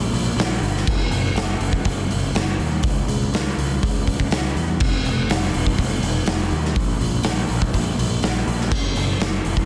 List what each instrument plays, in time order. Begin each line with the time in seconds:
Already playing: fingered electric bass A#1
0.13 fingered electric bass A#1, open hi-hat
0.36 fingered electric bass A#1, snare, open hi-hat
0.61 fingered electric bass G1, open hi-hat
0.77 snare
0.87 fingered electric bass F#1, kick, crash
1.10 fingered electric bass F#1, open hi-hat
1.35 fingered electric bass F#1, snare, open hi-hat
1.60 fingered electric bass F#1, open hi-hat
1.73 kick
1.85 fingered electric bass F#1, kick, open hi-hat
2.10 fingered electric bass F#1, open hi-hat
2.35 fingered electric bass F#1, snare, open hi-hat
2.59 fingered electric bass D#2, open hi-hat
2.83 fingered electric bass C#2, kick, open hi-hat
3.08 fingered electric bass C#2, open hi-hat
3.33 fingered electric bass C#2, snare, open hi-hat
3.57 fingered electric bass C#2, open hi-hat
3.83 fingered electric bass C#2, kick, open hi-hat
4.07 fingered electric bass C#2, kick, open hi-hat
4.20 kick
4.31 fingered electric bass C#2, snare, open hi-hat
4.55 fingered electric bass E2, open hi-hat
4.80 fingered electric bass F1, kick, crash
5.05 fingered electric bass F1, open hi-hat
5.30 fingered electric bass F1, snare, open hi-hat
5.54 fingered electric bass F1, open hi-hat
5.67 kick
5.78 fingered electric bass F1, kick, open hi-hat
6.03 fingered electric bass F1, open hi-hat
6.26 fingered electric bass F1, snare, open hi-hat
6.51 fingered electric bass D#2, open hi-hat
6.65 snare
6.76 fingered electric bass A#1, kick, open hi-hat
7.00 fingered electric bass A#1, open hi-hat
7.23 fingered electric bass A#1, snare, open hi-hat
7.49 fingered electric bass A#1, open hi-hat
7.62 kick
7.74 fingered electric bass A#1, kick, open hi-hat
7.98 fingered electric bass A#1, open hi-hat
8.23 fingered electric bass A#1, snare, open hi-hat
8.47 fingered electric bass A#1, open hi-hat
8.61 snare
8.72 fingered electric bass F#1, kick, crash
8.96 fingered electric bass F#1, open hi-hat
9.20 fingered electric bass F#1, snare, open hi-hat
9.45 fingered electric bass F#1, open hi-hat
9.57 kick